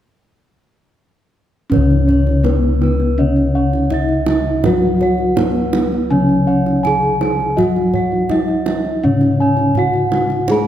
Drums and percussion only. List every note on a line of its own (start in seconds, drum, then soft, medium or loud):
1.72 kendang low medium
1.91 kendang slap soft
2.09 kendang low soft
2.27 kendang slap soft
2.44 kendang high soft
2.44 kendang low medium
2.63 kendang slap soft
2.82 kendang high soft
3.00 kendang slap soft
3.36 kendang slap soft
3.73 kendang slap soft
3.90 kendang low medium
4.09 kendang slap soft
4.26 kendang high medium
4.45 kendang slap soft
4.64 kendang high medium
4.64 kendang low medium
4.82 kendang slap soft
5.01 kendang low soft
5.18 kendang slap soft
5.37 kendang high medium
5.37 kendang low medium
5.55 kendang slap soft
5.73 kendang high medium
5.92 kendang slap soft
6.29 kendang slap soft
6.66 kendang slap soft
6.85 kendang low medium
7.03 kendang slap soft
7.21 kendang high medium
7.40 kendang slap soft
7.58 kendang low medium
7.76 kendang slap soft
7.94 kendang low medium
8.12 kendang slap soft
8.29 kendang high medium
8.29 kendang low medium
8.48 kendang slap soft
8.66 kendang high medium
8.85 kendang slap soft
9.21 kendang slap soft
9.57 kendang slap soft
9.75 kendang low medium
9.94 kendang slap soft
10.12 kendang high medium
10.30 kendang slap soft
10.48 kendang high medium
10.48 kendang low medium